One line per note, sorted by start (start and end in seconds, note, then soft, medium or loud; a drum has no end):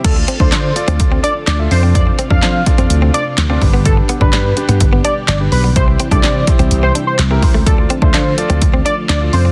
0.04 0.23 D2 loud
0.04 1.70 D3 medium
0.04 3.58 F3 medium
0.04 1.70 A3 medium
0.04 0.27 F4 medium
0.04 3.58 F4 medium
0.04 0.14 A4 loud
0.04 1.70 A4 medium
0.04 0.27 A4 medium
0.04 0.27 D5 medium
0.04 kick loud
0.04 closed hi-hat loud
0.04 crash loud
0.16 muted clean electric guitar stroke soft
0.28 0.37 C4 medium
0.28 closed hi-hat medium
0.40 0.49 D2 loud
0.40 0.49 D4 medium
0.40 0.48 F4 medium
0.40 0.48 A4 medium
0.40 0.74 C5 medium
0.40 0.48 D5 medium
0.40 kick medium
0.52 0.71 D3 loud
0.52 0.61 D4 medium
0.52 0.67 F4 medium
0.52 0.67 A4 medium
0.52 0.67 D5 medium
0.52 snare loud
0.52 clap loud
0.52 closed hi-hat medium
0.76 1.28 F4 medium
0.76 1.28 A4 medium
0.76 1.28 D5 medium
0.76 muted clean electric guitar stroke soft
0.76 closed hi-hat medium
0.88 0.97 D2 medium
0.88 0.96 C4 medium
0.88 closed hi-hat medium
1.00 1.18 D2 loud
1.00 muted clean electric guitar stroke soft
1.00 kick loud
1.00 closed hi-hat loud
1.12 1.20 C4 medium
1.23 1.32 D4 medium
1.23 1.33 D5 medium
1.23 closed hi-hat medium
1.47 1.66 D2 loud
1.47 1.56 D4 medium
1.47 1.57 D5 medium
1.47 snare loud
1.47 clap loud
1.47 closed hi-hat loud
1.59 1.70 F4 medium
1.59 1.70 A4 medium
1.59 1.71 E5 medium
1.71 2.09 F2 loud
1.71 3.60 C3 medium
1.71 3.60 A3 medium
1.71 2.19 C4 medium
1.71 2.19 D4 medium
1.71 5.72 D4 medium
1.71 2.19 F4 medium
1.71 2.19 A4 medium
1.71 1.81 C5 medium
1.71 2.19 D5 medium
1.71 muted clean electric guitar stroke soft
1.71 open hi-hat medium
1.83 1.92 C4 medium
1.95 2.04 D5 loud
1.95 kick loud
1.95 closed hi-hat medium
2.07 muted clean electric guitar stroke soft
2.19 2.27 C4 medium
2.19 closed hi-hat medium
2.30 2.40 F2 medium
2.30 2.38 C4 medium
2.30 2.38 D4 medium
2.30 2.39 D4 medium
2.30 2.38 F4 medium
2.30 2.38 A4 medium
2.30 2.38 D5 medium
2.30 2.64 F5 medium
2.30 kick medium
2.42 2.61 F3 loud
2.42 2.57 C4 medium
2.42 2.57 D4 medium
2.42 2.51 D4 medium
2.42 2.57 F4 medium
2.42 2.58 A4 medium
2.42 2.58 C5 medium
2.42 snare medium
2.42 clap loud
2.42 closed hi-hat medium
2.66 3.18 C4 medium
2.66 3.18 D4 medium
2.66 3.18 F4 medium
2.66 3.19 A4 medium
2.66 3.19 D5 medium
2.66 muted clean electric guitar stroke soft
2.66 kick loud
2.66 closed hi-hat medium
2.78 2.88 F2 medium
2.78 2.87 C4 medium
2.78 closed hi-hat medium
2.90 3.09 D2 loud
2.90 muted clean electric guitar stroke soft
2.90 closed hi-hat loud
3.02 3.11 C4 medium
3.14 3.23 D4 medium
3.14 3.24 D5 medium
3.14 closed hi-hat medium
3.38 3.57 D2 loud
3.38 snare loud
3.38 clap loud
3.38 closed hi-hat loud
3.50 3.62 C4 medium
3.50 3.58 C4 medium
3.50 3.60 D4 medium
3.50 3.62 F4 medium
3.50 3.62 A4 medium
3.50 3.62 D5 loud
3.61 3.99 G1 loud
3.61 5.74 B2 medium
3.61 5.74 D3 medium
3.61 7.62 G3 medium
3.61 4.09 D4 medium
3.61 7.62 G4 medium
3.61 4.09 G4 medium
3.61 4.09 B4 loud
3.61 muted clean electric guitar stroke soft
3.61 kick loud
3.61 open hi-hat medium
3.74 3.82 B3 medium
3.85 3.95 A4 loud
3.85 kick loud
3.85 closed hi-hat medium
3.97 muted clean electric guitar stroke soft
4.09 4.18 B3 medium
4.09 closed hi-hat medium
4.21 4.30 G1 loud
4.21 4.29 D4 medium
4.21 4.30 D4 medium
4.21 4.29 G4 medium
4.21 4.55 B4 medium
4.21 4.29 B4 medium
4.21 kick loud
4.33 4.52 G2 loud
4.33 4.48 D4 medium
4.33 4.42 D4 medium
4.33 4.48 G4 medium
4.33 4.48 B4 medium
4.33 snare medium
4.33 clap loud
4.33 closed hi-hat medium
4.57 5.09 D4 medium
4.57 5.09 G4 medium
4.57 5.09 B4 medium
4.57 muted clean electric guitar stroke soft
4.57 closed hi-hat medium
4.69 4.78 G2 loud
4.69 4.77 B3 medium
4.69 closed hi-hat medium
4.80 4.99 G1 loud
4.80 muted clean electric guitar stroke medium
4.80 kick loud
4.80 closed hi-hat loud
4.93 5.01 B3 medium
5.05 5.13 D4 medium
5.05 5.14 D5 medium
5.05 closed hi-hat medium
5.28 5.47 G1 loud
5.28 5.37 D4 medium
5.28 5.38 D5 medium
5.28 snare loud
5.28 clap loud
5.28 closed hi-hat loud
5.40 5.62 D4 medium
5.40 5.63 G4 medium
5.40 5.63 B4 medium
5.52 5.71 B1 loud
5.52 5.62 B4 medium
5.52 muted clean electric guitar stroke soft
5.52 open hi-hat medium
5.64 5.73 B3 medium
5.76 5.95 C2 loud
5.76 7.65 C3 medium
5.76 7.65 E3 medium
5.76 5.98 E4 medium
5.76 7.65 E4 medium
5.76 5.98 G4 medium
5.76 5.85 C5 loud
5.76 5.98 C5 medium
5.76 kick loud
5.76 closed hi-hat loud
5.88 muted clean electric guitar stroke soft
6.00 6.08 C4 medium
6.00 closed hi-hat medium
6.11 6.21 C2 medium
6.11 6.20 D4 medium
6.11 6.19 E4 medium
6.11 6.19 G4 medium
6.11 6.19 A4 medium
6.11 6.45 D5 medium
6.11 kick medium
6.11 closed hi-hat medium
6.23 6.42 C3 loud
6.23 6.32 D4 medium
6.23 6.38 E4 medium
6.23 6.38 G4 medium
6.23 6.39 C5 medium
6.23 snare medium
6.23 clap loud
6.23 closed hi-hat medium
6.47 6.99 E4 medium
6.47 6.99 G4 medium
6.47 7.00 C5 medium
6.47 muted clean electric guitar stroke soft
6.47 kick loud
6.47 closed hi-hat medium
6.59 6.69 C2 medium
6.59 6.68 C4 medium
6.59 closed hi-hat medium
6.71 6.90 C2 loud
6.71 muted clean electric guitar stroke soft
6.71 closed hi-hat medium
6.83 6.92 C4 medium
6.83 6.93 C5 medium
6.95 7.04 D4 medium
6.95 closed hi-hat medium
7.07 7.16 C5 medium
7.19 7.38 C2 loud
7.19 snare loud
7.19 clap loud
7.19 closed hi-hat loud
7.31 7.39 C4 medium
7.31 7.53 E4 medium
7.31 7.53 G4 medium
7.31 7.53 A#4 loud
7.42 muted clean electric guitar stroke soft
7.42 kick loud
7.42 open hi-hat medium
7.54 7.63 A3 medium
7.66 7.85 D2 loud
7.66 9.32 D3 medium
7.66 9.52 F3 medium
7.66 9.52 A3 medium
7.66 7.89 F4 medium
7.66 9.52 F4 medium
7.66 7.76 A4 loud
7.66 7.89 A4 medium
7.66 9.32 A4 medium
7.66 7.89 D5 medium
7.66 kick loud
7.66 closed hi-hat medium
7.78 muted clean electric guitar stroke soft
7.90 7.99 C4 medium
7.90 closed hi-hat medium
8.02 8.11 D2 loud
8.02 8.11 D4 medium
8.02 8.09 F4 medium
8.02 8.10 A4 medium
8.02 8.36 C5 medium
8.02 8.10 E5 medium
8.02 kick medium
8.14 8.33 D3 loud
8.14 8.23 D4 medium
8.14 8.29 F4 medium
8.14 8.29 A4 medium
8.14 8.29 F5 medium
8.14 snare medium
8.14 clap loud
8.14 closed hi-hat medium
8.38 8.90 F4 medium
8.38 8.90 A4 medium
8.38 8.90 D5 medium
8.38 muted clean electric guitar stroke soft
8.38 closed hi-hat medium
8.50 8.59 D2 medium
8.50 8.58 C4 medium
8.50 closed hi-hat medium
8.62 8.80 D2 loud
8.62 muted clean electric guitar stroke soft
8.62 kick loud
8.62 closed hi-hat medium
8.74 8.82 C4 medium
8.85 8.94 D4 medium
8.85 8.95 D5 medium
8.85 closed hi-hat medium
9.09 9.28 D2 loud
9.09 9.18 D4 medium
9.09 9.19 D5 medium
9.09 snare loud
9.09 clap loud
9.09 closed hi-hat loud
9.21 9.32 F4 medium
9.21 9.32 A4 medium
9.21 9.32 D5 medium
9.33 9.52 F2 medium
9.33 9.52 C3 medium
9.33 9.52 C4 medium
9.33 9.52 D4 medium
9.33 9.52 F4 medium
9.33 9.52 A4 medium
9.33 9.43 C5 medium
9.33 9.52 D5 medium
9.33 muted clean electric guitar stroke soft
9.33 open hi-hat medium
9.45 9.52 C4 medium